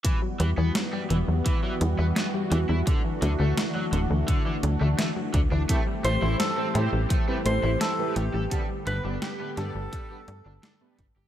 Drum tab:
HH |xxxxxxxx|xxxxxxxx|xxxxxxxx|xxxxxxxx|
SD |--o---o-|--o---o-|--o---o-|--oo--o-|
BD |o---o---|o---o--o|o---o---|o---o--o|